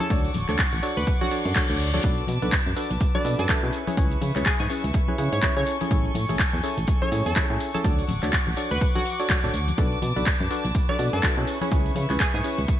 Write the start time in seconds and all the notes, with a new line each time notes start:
0.00 C#4 E4 G#4 A4 C#5, closed hi-hat, high conga, shaker
0.10 D2 D4 F#4 A4 C#5 D5 F#5 C#6 D6, kick, closed hi-hat, tambourine, shaker
0.25 closed hi-hat, tambourine, shaker
0.34 D1, open hi-hat, tambourine, high conga, shaker
0.49 D2 D4 F#4 A4 C#5 D5, clap, closed hi-hat, tambourine, shaker
0.59 kick, clap, closed hi-hat, tambourine, shaker
0.73 A1, closed hi-hat, tambourine, high conga, shaker
0.83 D4 F#4 A4 C#5 D5, open hi-hat, tambourine, shaker
0.97 D2 B4, closed hi-hat, tambourine, shaker
1.07 kick, closed hi-hat, tambourine, reverse cymbal, shaker
1.21 D4 F#4 A4 C#5 D5, closed hi-hat, high conga, shaker
1.31 D4 F#4 A4 C#5 D5, open hi-hat, tambourine, shaker
1.45 F#2, closed hi-hat, tambourine, shaker
1.55 D4 F#4 A4 C#5 D5, kick, clap, closed hi-hat, tambourine, high conga, shaker
1.70 D2 D4 F#4 A4 C#5 D5, tambourine, shaker
1.80 open hi-hat, tambourine, shaker
1.94 D4 F#4 A4 C#5 D5, closed hi-hat, tambourine, high conga, shaker
2.04 B1 D4 F#4 A4 B4 D5 A5, kick, closed hi-hat, tambourine, shaker
2.18 closed hi-hat, shaker
2.27 B2, open hi-hat, tambourine, high conga, shaker
2.42 B1 D4 F#4 A4 B4 D5, closed hi-hat, tambourine, shaker
2.52 kick, clap, closed hi-hat, tambourine, shaker
2.66 F#2, tambourine, high conga, shaker
2.76 D4 F#4 A4 B4 D5, open hi-hat, tambourine, shaker
2.91 B1, closed hi-hat, tambourine, shaker
3.00 kick, closed hi-hat, tambourine, shaker
3.15 D4 F#4 A4 B4 D5, high conga
3.25 B2 D4 F#4 A4 B4 D5, open hi-hat, tambourine, shaker
3.39 F#2 A4, closed hi-hat, tambourine, shaker
3.49 D4 F#4 A4 B4 E5, kick, clap, closed hi-hat, tambourine, high conga, shaker
3.63 B2 C#4 E4 G#4 B4 C#5, shaker
3.73 E5 C#6, open hi-hat, tambourine, shaker
3.87 C#4 E4 G#4 B4 C#5, closed hi-hat, tambourine, high conga, shaker
3.97 C#2 C#4 E4 G#4 B4 C#5, kick, closed hi-hat, tambourine, shaker
4.11 closed hi-hat, tambourine, shaker
4.21 C#3, open hi-hat, tambourine, high conga, shaker
4.36 C#2 C#4 E4 G#4 B4 C#5, clap, closed hi-hat, tambourine, shaker
4.46 G#4, kick, clap, closed hi-hat, tambourine, shaker
4.60 G#2 G#4, tambourine, high conga, shaker
4.70 C#4 E4 G#4 B4 C#5, open hi-hat, tambourine, shaker
4.84 C#2, closed hi-hat, tambourine, shaker
4.94 kick, closed hi-hat, tambourine, shaker
5.08 C#4 E4 G#4 B4 C#5, high conga
5.18 C#3 C#4 E4 G#4 B4 C#5, open hi-hat, tambourine, shaker
5.32 G#2 C#5, closed hi-hat, tambourine, shaker
5.42 C#4 E4 G#4 B4 E5, kick, clap, closed hi-hat, tambourine, high conga, shaker
5.57 C#3 C#4 E4 G#4 A4 C#5, tambourine, shaker
5.66 A4 G#5, open hi-hat, tambourine, shaker
5.80 C#4 E4 G#4 A4 C#5, closed hi-hat, tambourine, high conga, shaker
5.91 A1 C#4 E4 G#4 A4 C#5, kick, closed hi-hat, tambourine, shaker
6.05 closed hi-hat, shaker
6.15 A2, open hi-hat, tambourine, high conga, shaker
6.29 A1 C#4 E4 G#4 A4 C#5, closed hi-hat, tambourine, shaker
6.39 kick, clap, closed hi-hat, tambourine, shaker
6.53 E2, tambourine, high conga, shaker
6.63 C#4 E4 G#4 A4 C#5, open hi-hat, tambourine, shaker
6.78 A1, closed hi-hat, tambourine, shaker
6.87 kick, closed hi-hat, tambourine, shaker
7.02 C#4 E4 G#4 A4 C#5, high conga
7.12 A2 C#4 E4 G#4 A4 C#5, open hi-hat, tambourine, shaker
7.26 E2 A4, closed hi-hat, tambourine, shaker
7.36 C#4 E4 G#4 A4 E5, kick, clap, closed hi-hat, tambourine, high conga, shaker
7.50 A2 C#4 E4 G#4 A4 C#5, shaker
7.60 open hi-hat, tambourine, shaker
7.74 C#4 E4 G#4 A4 C#5, closed hi-hat, tambourine, high conga, shaker
7.84 D2 D4 F#4 A4 C#5 D5 F#5 C#6 D6, kick, closed hi-hat, tambourine, shaker
7.99 closed hi-hat, tambourine, shaker
8.08 D1, open hi-hat, tambourine, high conga, shaker
8.22 D2 D4 F#4 A4 C#5 D5, clap, closed hi-hat, tambourine, shaker
8.33 kick, clap, closed hi-hat, tambourine, shaker
8.46 A1, tambourine, high conga, shaker
8.57 D4 F#4 A4 C#5 D5, open hi-hat, tambourine, shaker
8.71 D2 B4, closed hi-hat, tambourine, shaker
8.81 kick, closed hi-hat, tambourine, shaker
8.95 D4 F#4 A4 C#5 D5, high conga, shaker
9.06 open hi-hat, tambourine, shaker
9.20 D4 F#4 A4 C#5 D5, closed hi-hat, tambourine, shaker
9.29 kick, clap, closed hi-hat, tambourine, high conga, shaker
9.44 D1 D4 F#4 A4 C#5 D5, tambourine, shaker
9.54 D2, open hi-hat, tambourine, shaker
9.68 closed hi-hat, tambourine, high conga, shaker
9.78 B1 D4 F#4 A4 B4 D5 A5, kick, closed hi-hat, tambourine, shaker
9.92 closed hi-hat, shaker
10.02 B2, open hi-hat, tambourine, high conga, shaker
10.16 B1 D4 F#4 A4 B4 D5, closed hi-hat, tambourine, shaker
10.26 kick, clap, closed hi-hat, tambourine, shaker
10.40 F#2, tambourine, high conga, shaker
10.51 D4 F#4 A4 B4 D5, open hi-hat, tambourine, shaker
10.65 B1, closed hi-hat, tambourine, shaker
10.75 kick, closed hi-hat, tambourine, shaker
10.89 D4 F#4 A4 B4 D5, high conga
10.99 B2 D4 F#4 A4 B4 D5, open hi-hat, tambourine, shaker
11.13 F#2 A4, closed hi-hat, tambourine, shaker
11.23 D4 F#4 A4 B4 E5, kick, clap, closed hi-hat, tambourine, high conga, shaker
11.37 B2 C#4 E4 G#4 B4 C#5, shaker
11.47 E5 C#6, open hi-hat, tambourine, shaker
11.61 C#4 E4 G#4 B4 C#5, closed hi-hat, tambourine, high conga, shaker
11.71 C#2 C#4 E4 G#4 B4 C#5, kick, closed hi-hat, tambourine, shaker
11.86 closed hi-hat, tambourine, shaker
11.95 C#3, open hi-hat, tambourine, high conga, shaker
12.09 C#2 C#4 E4 G#4 B4 C#5, clap, closed hi-hat, tambourine, shaker
12.20 G#4, kick, clap, closed hi-hat, tambourine, shaker
12.34 G#2 G#4, tambourine, high conga, shaker
12.44 C#4 E4 G#4 B4 C#5, open hi-hat, tambourine, shaker
12.58 C#2, closed hi-hat, tambourine, shaker
12.68 kick, closed hi-hat, tambourine, shaker